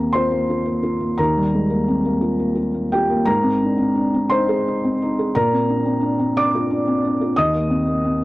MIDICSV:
0, 0, Header, 1, 2, 480
1, 0, Start_track
1, 0, Key_signature, -3, "major"
1, 0, Tempo, 700117
1, 812, Time_signature, 6, 3, 24, 8
1, 2244, Tempo, 679502
1, 5754, End_track
2, 0, Start_track
2, 0, Title_t, "Felt piano"
2, 0, Program_c, 0, 0
2, 0, Control_c, 0, 64, 127
2, 0, Note_on_c, 0, 39, 57
2, 0, Note_on_c, 0, 58, 48
2, 0, Note_on_c, 0, 60, 44
2, 0, Note_on_c, 0, 70, 70
2, 0, Note_on_c, 0, 82, 90
2, 86, Note_on_c, 0, 84, 84
2, 87, Note_off_c, 0, 82, 0
2, 98, Note_on_c, 0, 65, 46
2, 98, Note_on_c, 0, 72, 72
2, 164, Note_off_c, 0, 58, 0
2, 286, Note_off_c, 0, 65, 0
2, 341, Note_on_c, 0, 65, 45
2, 450, Note_on_c, 0, 58, 45
2, 528, Note_off_c, 0, 65, 0
2, 570, Note_on_c, 0, 65, 46
2, 643, Note_off_c, 0, 58, 0
2, 689, Note_on_c, 0, 58, 44
2, 764, Note_off_c, 0, 65, 0
2, 791, Note_off_c, 0, 72, 0
2, 792, Note_off_c, 0, 39, 0
2, 807, Note_on_c, 0, 82, 87
2, 812, Note_off_c, 0, 84, 0
2, 813, Note_on_c, 0, 39, 56
2, 815, Note_off_c, 0, 70, 0
2, 815, Note_on_c, 0, 70, 63
2, 824, Control_c, 0, 64, 0
2, 830, Note_off_c, 0, 60, 0
2, 883, Note_off_c, 0, 58, 0
2, 942, Note_on_c, 0, 55, 52
2, 959, Control_c, 0, 64, 127
2, 1057, Note_on_c, 0, 56, 39
2, 1128, Note_off_c, 0, 55, 0
2, 1167, Note_on_c, 0, 58, 46
2, 1173, Note_off_c, 0, 56, 0
2, 1290, Note_on_c, 0, 60, 45
2, 1358, Note_off_c, 0, 58, 0
2, 1407, Note_on_c, 0, 58, 49
2, 1408, Note_off_c, 0, 60, 0
2, 1516, Note_on_c, 0, 65, 45
2, 1599, Note_off_c, 0, 58, 0
2, 1642, Note_on_c, 0, 58, 45
2, 1714, Note_off_c, 0, 65, 0
2, 1741, Note_off_c, 0, 70, 0
2, 1751, Note_on_c, 0, 65, 47
2, 1764, Note_off_c, 0, 82, 0
2, 1837, Note_off_c, 0, 58, 0
2, 1879, Note_on_c, 0, 58, 44
2, 1950, Note_off_c, 0, 65, 0
2, 2003, Note_on_c, 0, 79, 82
2, 2010, Note_on_c, 0, 65, 49
2, 2010, Note_on_c, 0, 67, 62
2, 2073, Note_off_c, 0, 58, 0
2, 2124, Note_on_c, 0, 58, 50
2, 2198, Note_off_c, 0, 65, 0
2, 2216, Note_off_c, 0, 39, 0
2, 2229, Note_off_c, 0, 67, 0
2, 2231, Note_on_c, 0, 82, 99
2, 2239, Note_on_c, 0, 44, 60
2, 2241, Note_off_c, 0, 79, 0
2, 2243, Note_off_c, 0, 58, 0
2, 2244, Note_on_c, 0, 70, 72
2, 2255, Control_c, 0, 64, 0
2, 2355, Note_on_c, 0, 60, 54
2, 2387, Control_c, 0, 64, 127
2, 2493, Note_on_c, 0, 62, 44
2, 2554, Note_off_c, 0, 60, 0
2, 2601, Note_on_c, 0, 60, 49
2, 2611, Note_off_c, 0, 62, 0
2, 2727, Note_on_c, 0, 62, 48
2, 2795, Note_off_c, 0, 60, 0
2, 2845, Note_off_c, 0, 62, 0
2, 2858, Note_on_c, 0, 60, 54
2, 2936, Note_off_c, 0, 70, 0
2, 2958, Note_off_c, 0, 82, 0
2, 2966, Note_on_c, 0, 84, 92
2, 2976, Note_on_c, 0, 72, 74
2, 2982, Note_on_c, 0, 63, 53
2, 3042, Note_off_c, 0, 60, 0
2, 3101, Note_on_c, 0, 68, 51
2, 3164, Note_off_c, 0, 63, 0
2, 3237, Note_on_c, 0, 63, 49
2, 3285, Note_off_c, 0, 68, 0
2, 3353, Note_on_c, 0, 60, 48
2, 3415, Note_off_c, 0, 63, 0
2, 3478, Note_on_c, 0, 63, 50
2, 3534, Note_off_c, 0, 60, 0
2, 3598, Note_on_c, 0, 68, 49
2, 3656, Note_off_c, 0, 63, 0
2, 3658, Note_off_c, 0, 44, 0
2, 3667, Note_off_c, 0, 72, 0
2, 3690, Note_off_c, 0, 84, 0
2, 3703, Control_c, 0, 64, 0
2, 3704, Note_off_c, 0, 68, 0
2, 3711, Note_on_c, 0, 82, 100
2, 3718, Note_on_c, 0, 46, 64
2, 3719, Note_on_c, 0, 70, 81
2, 3833, Control_c, 0, 64, 127
2, 3837, Note_on_c, 0, 60, 52
2, 3951, Note_on_c, 0, 62, 40
2, 4014, Note_off_c, 0, 60, 0
2, 4060, Note_off_c, 0, 62, 0
2, 4068, Note_on_c, 0, 60, 50
2, 4178, Note_on_c, 0, 62, 47
2, 4252, Note_off_c, 0, 60, 0
2, 4295, Note_off_c, 0, 62, 0
2, 4307, Note_on_c, 0, 60, 52
2, 4399, Note_off_c, 0, 70, 0
2, 4423, Note_off_c, 0, 82, 0
2, 4431, Note_on_c, 0, 74, 71
2, 4431, Note_on_c, 0, 86, 95
2, 4433, Note_on_c, 0, 62, 52
2, 4493, Note_off_c, 0, 60, 0
2, 4558, Note_on_c, 0, 65, 52
2, 4615, Note_off_c, 0, 62, 0
2, 4668, Note_on_c, 0, 62, 51
2, 4738, Note_off_c, 0, 65, 0
2, 4788, Note_on_c, 0, 60, 48
2, 4852, Note_off_c, 0, 62, 0
2, 4909, Note_on_c, 0, 62, 46
2, 4971, Note_off_c, 0, 60, 0
2, 5027, Note_on_c, 0, 65, 46
2, 5091, Note_off_c, 0, 62, 0
2, 5111, Note_off_c, 0, 74, 0
2, 5115, Note_off_c, 0, 46, 0
2, 5133, Note_on_c, 0, 87, 97
2, 5137, Note_off_c, 0, 65, 0
2, 5139, Note_off_c, 0, 86, 0
2, 5141, Control_c, 0, 64, 0
2, 5141, Note_on_c, 0, 39, 64
2, 5144, Note_on_c, 0, 75, 86
2, 5242, Control_c, 0, 64, 127
2, 5264, Note_on_c, 0, 58, 49
2, 5372, Note_on_c, 0, 60, 40
2, 5445, Note_off_c, 0, 58, 0
2, 5487, Note_off_c, 0, 60, 0
2, 5490, Note_on_c, 0, 58, 44
2, 5617, Note_on_c, 0, 60, 43
2, 5678, Note_off_c, 0, 58, 0
2, 5730, Note_off_c, 0, 60, 0
2, 5754, Note_off_c, 0, 39, 0
2, 5754, Note_off_c, 0, 75, 0
2, 5754, Note_off_c, 0, 87, 0
2, 5754, End_track
0, 0, End_of_file